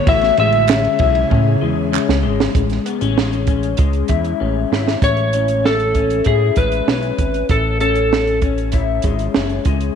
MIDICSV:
0, 0, Header, 1, 6, 480
1, 0, Start_track
1, 0, Key_signature, 3, "major"
1, 0, Tempo, 618111
1, 59, Time_signature, 4, 2, 24, 8
1, 7728, End_track
2, 0, Start_track
2, 0, Title_t, "Electric slide guitar"
2, 0, Program_c, 0, 29
2, 66, Note_on_c, 0, 76, 103
2, 299, Note_off_c, 0, 76, 0
2, 308, Note_on_c, 0, 76, 107
2, 993, Note_off_c, 0, 76, 0
2, 3913, Note_on_c, 0, 73, 92
2, 4394, Note_on_c, 0, 69, 83
2, 4401, Note_off_c, 0, 73, 0
2, 4866, Note_off_c, 0, 69, 0
2, 4869, Note_on_c, 0, 68, 82
2, 5106, Note_on_c, 0, 71, 91
2, 5112, Note_off_c, 0, 68, 0
2, 5792, Note_off_c, 0, 71, 0
2, 5831, Note_on_c, 0, 69, 74
2, 6056, Note_off_c, 0, 69, 0
2, 6065, Note_on_c, 0, 69, 75
2, 6512, Note_off_c, 0, 69, 0
2, 7728, End_track
3, 0, Start_track
3, 0, Title_t, "Clean electric guitar"
3, 0, Program_c, 1, 27
3, 0, Note_on_c, 1, 57, 64
3, 0, Note_on_c, 1, 59, 58
3, 63, Note_on_c, 1, 64, 68
3, 107, Note_off_c, 1, 59, 0
3, 296, Note_off_c, 1, 57, 0
3, 300, Note_on_c, 1, 56, 67
3, 536, Note_on_c, 1, 61, 57
3, 774, Note_off_c, 1, 64, 0
3, 777, Note_on_c, 1, 64, 66
3, 1010, Note_off_c, 1, 61, 0
3, 1013, Note_on_c, 1, 61, 62
3, 1250, Note_off_c, 1, 56, 0
3, 1253, Note_on_c, 1, 56, 63
3, 1490, Note_off_c, 1, 61, 0
3, 1493, Note_on_c, 1, 61, 65
3, 1729, Note_off_c, 1, 56, 0
3, 1732, Note_on_c, 1, 56, 70
3, 2216, Note_off_c, 1, 61, 0
3, 2219, Note_on_c, 1, 59, 63
3, 2337, Note_off_c, 1, 59, 0
3, 2337, Note_on_c, 1, 61, 49
3, 2455, Note_off_c, 1, 56, 0
3, 2458, Note_on_c, 1, 56, 57
3, 2693, Note_off_c, 1, 61, 0
3, 2702, Note_on_c, 1, 61, 59
3, 2933, Note_off_c, 1, 56, 0
3, 2937, Note_on_c, 1, 56, 69
3, 3173, Note_off_c, 1, 64, 0
3, 3176, Note_on_c, 1, 64, 61
3, 3415, Note_off_c, 1, 61, 0
3, 3418, Note_on_c, 1, 61, 54
3, 3661, Note_off_c, 1, 64, 0
3, 3664, Note_on_c, 1, 64, 66
3, 4141, Note_off_c, 1, 61, 0
3, 4144, Note_on_c, 1, 61, 55
3, 4615, Note_off_c, 1, 61, 0
3, 4624, Note_on_c, 1, 61, 53
3, 4864, Note_off_c, 1, 64, 0
3, 4867, Note_on_c, 1, 64, 63
3, 5104, Note_off_c, 1, 56, 0
3, 5107, Note_on_c, 1, 56, 54
3, 5336, Note_off_c, 1, 61, 0
3, 5346, Note_on_c, 1, 61, 54
3, 5584, Note_off_c, 1, 56, 0
3, 6050, Note_off_c, 1, 61, 0
3, 6060, Note_on_c, 1, 61, 57
3, 6534, Note_off_c, 1, 61, 0
3, 6543, Note_on_c, 1, 61, 55
3, 6776, Note_off_c, 1, 64, 0
3, 6779, Note_on_c, 1, 64, 63
3, 7023, Note_on_c, 1, 56, 63
3, 7254, Note_off_c, 1, 61, 0
3, 7264, Note_on_c, 1, 61, 56
3, 7496, Note_off_c, 1, 56, 0
3, 7506, Note_on_c, 1, 56, 60
3, 7728, Note_off_c, 1, 56, 0
3, 7728, Note_off_c, 1, 61, 0
3, 7728, Note_off_c, 1, 64, 0
3, 7728, End_track
4, 0, Start_track
4, 0, Title_t, "Ambient pad"
4, 0, Program_c, 2, 92
4, 52, Note_on_c, 2, 56, 75
4, 52, Note_on_c, 2, 68, 83
4, 56, Note_on_c, 2, 49, 84
4, 1957, Note_off_c, 2, 56, 0
4, 1957, Note_off_c, 2, 68, 0
4, 1959, Note_off_c, 2, 49, 0
4, 7728, End_track
5, 0, Start_track
5, 0, Title_t, "Analog synth bass"
5, 0, Program_c, 3, 38
5, 54, Note_on_c, 3, 33, 108
5, 248, Note_off_c, 3, 33, 0
5, 296, Note_on_c, 3, 33, 98
5, 682, Note_off_c, 3, 33, 0
5, 776, Note_on_c, 3, 35, 99
5, 969, Note_off_c, 3, 35, 0
5, 1021, Note_on_c, 3, 45, 109
5, 1212, Note_off_c, 3, 45, 0
5, 1262, Note_on_c, 3, 40, 89
5, 1549, Note_off_c, 3, 40, 0
5, 1623, Note_on_c, 3, 37, 93
5, 1744, Note_on_c, 3, 32, 86
5, 1756, Note_off_c, 3, 37, 0
5, 1934, Note_off_c, 3, 32, 0
5, 1979, Note_on_c, 3, 33, 101
5, 2171, Note_off_c, 3, 33, 0
5, 2344, Note_on_c, 3, 33, 88
5, 2912, Note_off_c, 3, 33, 0
5, 2941, Note_on_c, 3, 37, 103
5, 3133, Note_off_c, 3, 37, 0
5, 3178, Note_on_c, 3, 40, 87
5, 3371, Note_off_c, 3, 40, 0
5, 3426, Note_on_c, 3, 33, 96
5, 3615, Note_off_c, 3, 33, 0
5, 3663, Note_on_c, 3, 32, 72
5, 3854, Note_off_c, 3, 32, 0
5, 3899, Note_on_c, 3, 33, 104
5, 4829, Note_off_c, 3, 33, 0
5, 4864, Note_on_c, 3, 45, 103
5, 5054, Note_off_c, 3, 45, 0
5, 5100, Note_on_c, 3, 33, 80
5, 5292, Note_off_c, 3, 33, 0
5, 5338, Note_on_c, 3, 35, 92
5, 5531, Note_off_c, 3, 35, 0
5, 5582, Note_on_c, 3, 32, 75
5, 5774, Note_off_c, 3, 32, 0
5, 5822, Note_on_c, 3, 33, 104
5, 6991, Note_off_c, 3, 33, 0
5, 7021, Note_on_c, 3, 32, 100
5, 7213, Note_off_c, 3, 32, 0
5, 7266, Note_on_c, 3, 30, 86
5, 7457, Note_off_c, 3, 30, 0
5, 7499, Note_on_c, 3, 37, 83
5, 7692, Note_off_c, 3, 37, 0
5, 7728, End_track
6, 0, Start_track
6, 0, Title_t, "Drums"
6, 53, Note_on_c, 9, 51, 81
6, 54, Note_on_c, 9, 36, 114
6, 131, Note_off_c, 9, 51, 0
6, 132, Note_off_c, 9, 36, 0
6, 165, Note_on_c, 9, 51, 36
6, 180, Note_on_c, 9, 38, 44
6, 243, Note_off_c, 9, 51, 0
6, 258, Note_off_c, 9, 38, 0
6, 290, Note_on_c, 9, 51, 60
6, 367, Note_off_c, 9, 51, 0
6, 407, Note_on_c, 9, 51, 42
6, 484, Note_off_c, 9, 51, 0
6, 523, Note_on_c, 9, 51, 66
6, 538, Note_on_c, 9, 39, 94
6, 540, Note_on_c, 9, 38, 107
6, 601, Note_off_c, 9, 51, 0
6, 616, Note_off_c, 9, 39, 0
6, 618, Note_off_c, 9, 38, 0
6, 657, Note_on_c, 9, 51, 37
6, 734, Note_off_c, 9, 51, 0
6, 766, Note_on_c, 9, 51, 55
6, 774, Note_on_c, 9, 36, 92
6, 844, Note_off_c, 9, 51, 0
6, 852, Note_off_c, 9, 36, 0
6, 892, Note_on_c, 9, 51, 40
6, 970, Note_off_c, 9, 51, 0
6, 1019, Note_on_c, 9, 36, 83
6, 1097, Note_off_c, 9, 36, 0
6, 1509, Note_on_c, 9, 39, 85
6, 1587, Note_off_c, 9, 39, 0
6, 1625, Note_on_c, 9, 38, 81
6, 1703, Note_off_c, 9, 38, 0
6, 1866, Note_on_c, 9, 38, 102
6, 1944, Note_off_c, 9, 38, 0
6, 1979, Note_on_c, 9, 42, 88
6, 1980, Note_on_c, 9, 36, 106
6, 2057, Note_off_c, 9, 36, 0
6, 2057, Note_off_c, 9, 42, 0
6, 2093, Note_on_c, 9, 42, 36
6, 2108, Note_on_c, 9, 38, 39
6, 2171, Note_off_c, 9, 42, 0
6, 2185, Note_off_c, 9, 38, 0
6, 2221, Note_on_c, 9, 42, 70
6, 2298, Note_off_c, 9, 42, 0
6, 2339, Note_on_c, 9, 42, 46
6, 2416, Note_off_c, 9, 42, 0
6, 2466, Note_on_c, 9, 38, 95
6, 2544, Note_off_c, 9, 38, 0
6, 2583, Note_on_c, 9, 42, 34
6, 2661, Note_off_c, 9, 42, 0
6, 2693, Note_on_c, 9, 42, 62
6, 2699, Note_on_c, 9, 36, 84
6, 2771, Note_off_c, 9, 42, 0
6, 2776, Note_off_c, 9, 36, 0
6, 2818, Note_on_c, 9, 42, 47
6, 2896, Note_off_c, 9, 42, 0
6, 2929, Note_on_c, 9, 42, 79
6, 2941, Note_on_c, 9, 36, 76
6, 3006, Note_off_c, 9, 42, 0
6, 3018, Note_off_c, 9, 36, 0
6, 3053, Note_on_c, 9, 42, 32
6, 3130, Note_off_c, 9, 42, 0
6, 3169, Note_on_c, 9, 42, 72
6, 3179, Note_on_c, 9, 36, 80
6, 3246, Note_off_c, 9, 42, 0
6, 3257, Note_off_c, 9, 36, 0
6, 3296, Note_on_c, 9, 42, 39
6, 3373, Note_off_c, 9, 42, 0
6, 3670, Note_on_c, 9, 38, 77
6, 3748, Note_off_c, 9, 38, 0
6, 3787, Note_on_c, 9, 38, 78
6, 3864, Note_off_c, 9, 38, 0
6, 3898, Note_on_c, 9, 42, 90
6, 3899, Note_on_c, 9, 36, 103
6, 3976, Note_off_c, 9, 36, 0
6, 3976, Note_off_c, 9, 42, 0
6, 4014, Note_on_c, 9, 42, 34
6, 4091, Note_off_c, 9, 42, 0
6, 4138, Note_on_c, 9, 42, 66
6, 4216, Note_off_c, 9, 42, 0
6, 4257, Note_on_c, 9, 42, 48
6, 4334, Note_off_c, 9, 42, 0
6, 4391, Note_on_c, 9, 38, 95
6, 4469, Note_off_c, 9, 38, 0
6, 4500, Note_on_c, 9, 42, 31
6, 4577, Note_off_c, 9, 42, 0
6, 4617, Note_on_c, 9, 42, 61
6, 4620, Note_on_c, 9, 36, 70
6, 4695, Note_off_c, 9, 42, 0
6, 4698, Note_off_c, 9, 36, 0
6, 4739, Note_on_c, 9, 42, 47
6, 4816, Note_off_c, 9, 42, 0
6, 4849, Note_on_c, 9, 42, 70
6, 4862, Note_on_c, 9, 36, 74
6, 4926, Note_off_c, 9, 42, 0
6, 4940, Note_off_c, 9, 36, 0
6, 5093, Note_on_c, 9, 42, 65
6, 5101, Note_on_c, 9, 36, 74
6, 5170, Note_off_c, 9, 42, 0
6, 5179, Note_off_c, 9, 36, 0
6, 5216, Note_on_c, 9, 42, 39
6, 5293, Note_off_c, 9, 42, 0
6, 5343, Note_on_c, 9, 38, 107
6, 5421, Note_off_c, 9, 38, 0
6, 5455, Note_on_c, 9, 42, 33
6, 5532, Note_off_c, 9, 42, 0
6, 5579, Note_on_c, 9, 42, 68
6, 5580, Note_on_c, 9, 36, 77
6, 5657, Note_off_c, 9, 42, 0
6, 5658, Note_off_c, 9, 36, 0
6, 5701, Note_on_c, 9, 42, 43
6, 5779, Note_off_c, 9, 42, 0
6, 5817, Note_on_c, 9, 42, 80
6, 5821, Note_on_c, 9, 36, 106
6, 5895, Note_off_c, 9, 42, 0
6, 5898, Note_off_c, 9, 36, 0
6, 6060, Note_on_c, 9, 42, 63
6, 6138, Note_off_c, 9, 42, 0
6, 6177, Note_on_c, 9, 42, 44
6, 6254, Note_off_c, 9, 42, 0
6, 6311, Note_on_c, 9, 38, 95
6, 6389, Note_off_c, 9, 38, 0
6, 6424, Note_on_c, 9, 42, 34
6, 6502, Note_off_c, 9, 42, 0
6, 6536, Note_on_c, 9, 42, 59
6, 6540, Note_on_c, 9, 36, 75
6, 6613, Note_off_c, 9, 42, 0
6, 6617, Note_off_c, 9, 36, 0
6, 6661, Note_on_c, 9, 42, 40
6, 6739, Note_off_c, 9, 42, 0
6, 6771, Note_on_c, 9, 42, 80
6, 6784, Note_on_c, 9, 36, 76
6, 6848, Note_off_c, 9, 42, 0
6, 6861, Note_off_c, 9, 36, 0
6, 7007, Note_on_c, 9, 42, 68
6, 7020, Note_on_c, 9, 36, 74
6, 7084, Note_off_c, 9, 42, 0
6, 7098, Note_off_c, 9, 36, 0
6, 7135, Note_on_c, 9, 42, 38
6, 7213, Note_off_c, 9, 42, 0
6, 7256, Note_on_c, 9, 38, 106
6, 7334, Note_off_c, 9, 38, 0
6, 7372, Note_on_c, 9, 42, 30
6, 7449, Note_off_c, 9, 42, 0
6, 7493, Note_on_c, 9, 42, 68
6, 7498, Note_on_c, 9, 36, 76
6, 7570, Note_off_c, 9, 42, 0
6, 7576, Note_off_c, 9, 36, 0
6, 7614, Note_on_c, 9, 42, 46
6, 7691, Note_off_c, 9, 42, 0
6, 7728, End_track
0, 0, End_of_file